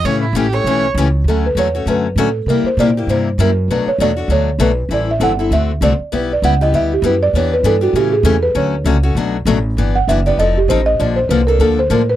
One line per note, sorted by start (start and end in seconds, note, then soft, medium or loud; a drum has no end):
0.04 0.32 A2 medium
0.04 0.24 C#3 medium
0.04 0.24 E3 medium
0.04 0.24 A3 medium
0.04 0.24 C#4 medium
0.04 0.24 G4 medium
0.04 0.21 C#5 medium
0.22 0.37 E4 medium
0.33 0.63 A1 medium
0.33 0.45 C#3 medium
0.33 0.46 E3 medium
0.33 0.46 A3 medium
0.33 0.46 C#4 medium
0.33 0.55 G4 medium
0.33 0.46 G4 medium
0.53 0.65 A3 soft
0.53 0.65 C#4 medium
0.53 0.65 G4 medium
0.53 0.83 C#5 medium
0.64 0.94 B1 medium
0.64 0.85 C#3 medium
0.64 0.85 E3 medium
0.64 0.85 A3 medium
0.64 0.85 C#4 medium
0.64 0.85 G4 medium
0.94 1.24 C#2 medium
0.94 1.07 C#3 medium
0.94 1.07 E3 medium
0.94 1.07 A3 medium
0.94 1.07 C#4 medium
0.99 1.07 G4 medium
1.24 1.54 D2 medium
1.24 1.46 D3 medium
1.28 1.46 F#3 medium
1.28 1.46 A3 medium
1.28 1.47 C#4 medium
1.28 1.47 F#4 medium
1.28 1.44 A4 medium
1.46 1.57 B4 medium
1.55 1.85 E2 medium
1.55 1.67 D3 medium
1.55 1.67 F#3 medium
1.55 1.67 A3 medium
1.55 1.67 C#4 medium
1.55 1.68 F#4 medium
1.59 1.86 C#5 medium
1.75 1.86 A3 soft
1.75 1.87 C#4 soft
1.75 1.87 F#4 medium
1.86 2.15 F#2 medium
1.86 2.06 D3 medium
1.86 2.06 F#3 medium
1.86 2.06 A3 medium
1.86 2.06 C#4 medium
1.86 2.07 F#4 medium
1.90 2.17 B4 medium
2.16 2.45 A2 medium
2.16 2.28 D3 medium
2.16 2.28 F#3 medium
2.16 2.28 A3 medium
2.16 2.28 C#4 medium
2.16 2.28 F#4 loud
2.16 2.35 A4 medium
2.46 2.63 C3 medium
2.46 2.67 C3 medium
2.46 2.68 G3 medium
2.46 2.68 A#3 medium
2.46 2.68 E4 medium
2.46 2.68 G4 medium
2.46 2.65 A#4 medium
2.64 2.78 C5 medium
2.64 muted upright bass stroke soft
2.77 3.06 A#2 medium
2.77 2.89 C3 medium
2.77 2.89 G3 medium
2.77 2.89 A#3 medium
2.77 2.89 E4 medium
2.77 2.89 G4 medium
2.77 3.07 D5 medium
2.97 3.09 A#3 soft
2.97 3.09 E4 soft
2.97 3.09 G4 soft
3.07 3.37 G2 medium
3.07 3.28 C3 medium
3.07 3.28 G3 medium
3.07 3.28 A#3 medium
3.07 3.28 E4 medium
3.07 3.28 G4 medium
3.07 3.38 C5 medium
3.38 3.67 F#2 medium
3.38 3.49 C3 medium
3.38 3.50 G3 medium
3.38 3.50 A#3 medium
3.38 3.50 E4 loud
3.38 3.50 G4 medium
3.38 3.57 A#4 medium
3.68 3.85 B1 medium
3.68 3.89 B2 medium
3.68 3.89 F#3 medium
3.68 3.89 A3 medium
3.68 3.89 D4 medium
3.68 3.89 F#4 medium
3.68 3.87 B4 medium
3.86 4.00 C#5 medium
3.86 muted upright bass stroke soft
3.98 4.27 E2 medium
3.98 4.10 B2 medium
3.98 4.11 F#3 medium
3.98 4.11 A3 medium
3.98 4.11 D4 medium
3.98 4.11 F#4 medium
3.98 4.29 D5 loud
4.17 4.29 A3 soft
4.17 4.29 D4 medium
4.17 4.29 F#4 medium
4.28 4.58 D2 medium
4.28 4.49 B2 medium
4.28 4.49 F#3 medium
4.28 4.49 A3 medium
4.28 4.49 D4 medium
4.28 4.49 F#4 medium
4.28 4.59 C#5 medium
4.59 4.88 B1 medium
4.59 4.70 B2 medium
4.59 4.70 F#3 medium
4.59 4.70 A3 loud
4.59 4.71 D4 medium
4.59 4.71 F#4 medium
4.59 4.78 B4 medium
4.89 5.19 A1 medium
4.89 5.10 E3 medium
4.89 5.10 G3 medium
4.89 5.10 C4 medium
4.89 5.10 E4 medium
4.89 5.10 A4 medium
4.93 5.09 D5 medium
5.11 5.22 E5 medium
5.20 5.50 G1 medium
5.20 5.31 E3 medium
5.20 5.32 G3 medium
5.20 5.31 C4 medium
5.20 5.31 E4 medium
5.20 5.32 A4 medium
5.20 5.51 F#5 medium
5.39 5.51 C4 soft
5.39 5.52 E4 medium
5.39 5.51 A4 medium
5.51 5.80 D2 medium
5.51 5.71 D3 medium
5.51 5.71 A3 medium
5.51 5.71 C4 medium
5.51 5.71 F#4 medium
5.51 5.71 A4 medium
5.51 5.81 E5 medium
5.81 5.98 C2 loud
5.81 5.92 D3 medium
5.81 5.92 A3 medium
5.81 5.93 C4 medium
5.81 5.92 F#4 medium
5.81 5.93 A4 medium
5.81 5.94 D5 medium
6.12 6.42 B1 medium
6.12 6.31 G3 medium
6.12 6.31 B3 medium
6.12 6.32 E4 medium
6.12 6.32 G4 medium
6.12 6.31 B4 medium
6.33 6.44 D5 medium
6.42 6.72 C#2 medium
6.42 6.54 G3 medium
6.42 6.53 B3 medium
6.42 6.54 E4 medium
6.42 6.54 G4 medium
6.42 6.61 F#5 loud
6.61 6.73 B3 soft
6.61 6.73 E4 medium
6.61 6.73 G4 medium
6.61 6.74 D#5 medium
6.72 7.01 D2 medium
6.72 6.92 G3 medium
6.72 6.92 B3 medium
6.72 6.93 E4 medium
6.72 6.93 G4 medium
6.72 6.91 E5 loud
6.94 7.05 G4 medium
7.02 7.32 F#2 loud
7.02 7.14 G3 medium
7.02 7.14 B3 medium
7.02 7.15 E4 medium
7.02 7.14 G4 medium
7.02 7.22 B4 medium
7.23 7.34 D5 loud
7.33 7.63 E2 medium
7.33 7.54 E3 medium
7.33 7.54 B3 medium
7.33 7.54 D4 medium
7.33 7.54 G4 medium
7.33 7.52 C#5 medium
7.54 7.65 B4 medium
7.63 7.93 G2 medium
7.63 7.75 E3 medium
7.63 7.75 B3 medium
7.63 7.75 D4 medium
7.63 7.75 G4 medium
7.63 7.82 A4 medium
7.81 7.95 B3 soft
7.81 7.94 D4 soft
7.81 7.95 F#4 medium
7.81 7.94 G4 medium
7.93 8.23 A2 medium
7.93 8.14 C#3 medium
7.93 8.14 E3 medium
7.93 8.14 A3 medium
7.93 8.15 C#4 medium
7.93 8.15 G4 medium
7.93 8.13 G4 medium
8.12 8.25 G#4 medium
8.23 8.54 E2 loud
8.23 8.35 C#3 medium
8.23 8.35 E3 medium
8.23 8.35 A3 loud
8.23 8.35 C#4 medium
8.23 8.36 G4 loud
8.23 8.42 A4 medium
8.43 8.55 B4 loud
8.55 8.84 D2 medium
8.55 8.74 D3 medium
8.55 8.74 F#3 medium
8.55 8.74 A3 medium
8.55 8.74 C#4 medium
8.55 8.75 F#4 medium
8.55 9.13 C#5 medium
8.84 9.15 C#2 medium
8.84 8.96 D3 medium
8.84 8.96 F#3 medium
8.84 8.96 A3 medium
8.84 8.96 C#4 medium
8.84 8.97 F#4 loud
9.03 9.16 A3 soft
9.03 9.16 C#4 medium
9.03 9.16 F#4 medium
9.15 9.45 B1 medium
9.15 9.36 B2 medium
9.15 9.36 F#3 medium
9.15 9.36 A3 medium
9.15 9.36 D4 medium
9.15 9.36 F#4 medium
9.45 9.76 A1 loud
9.45 9.57 B2 medium
9.45 9.57 F#3 medium
9.45 9.57 A3 loud
9.45 9.58 D4 medium
9.45 9.58 F#4 medium
9.77 10.06 G1 medium
9.77 9.97 E3 medium
9.77 9.97 B3 medium
9.77 9.97 D4 medium
9.77 9.97 G4 medium
9.96 10.08 F#5 medium
10.07 10.37 F#1 medium
10.07 10.19 E3 medium
10.07 10.19 B3 medium
10.07 10.19 D4 medium
10.07 10.19 G4 loud
10.07 10.25 E5 medium
10.26 10.39 B3 medium
10.26 10.38 D4 medium
10.26 10.38 G4 medium
10.26 10.39 D5 medium
10.38 10.67 F1 medium
10.38 10.58 F3 medium
10.38 10.58 C4 medium
10.38 10.58 D#4 medium
10.38 10.58 A4 medium
10.38 10.56 D#5 loud
10.57 10.69 G4 medium
10.68 10.98 A1 medium
10.68 10.80 F3 loud
10.68 10.80 C4 medium
10.68 10.80 D#4 loud
10.68 10.80 A4 medium
10.68 10.86 C5 medium
10.86 10.99 D#5 loud
11.00 11.28 A#1 medium
11.00 11.18 D3 medium
11.00 11.18 F3 medium
11.00 11.19 A#3 medium
11.00 11.19 D4 medium
11.00 11.19 A4 medium
11.00 11.16 D5 medium
11.16 11.29 C5 medium
11.29 11.58 C2 medium
11.29 11.40 D3 medium
11.29 11.40 F3 medium
11.29 11.40 A#3 medium
11.29 11.41 D4 medium
11.29 11.41 A4 medium
11.29 11.46 B4 medium
11.47 11.60 A#3 soft
11.47 11.60 D4 medium
11.47 11.59 A4 medium
11.47 11.59 A#4 medium
11.59 11.89 D2 medium
11.59 11.79 D3 medium
11.59 11.79 F3 medium
11.59 11.79 A#3 medium
11.59 11.79 D4 medium
11.59 11.79 A4 medium
11.59 11.78 A4 medium
11.79 11.91 C5 medium
11.90 12.16 A2 medium
11.90 12.00 D3 medium
11.90 12.01 F3 medium
11.90 12.01 A#3 medium
11.90 12.01 D4 loud
11.90 12.01 A4 loud
11.90 12.08 A#4 medium
12.09 12.16 B4 medium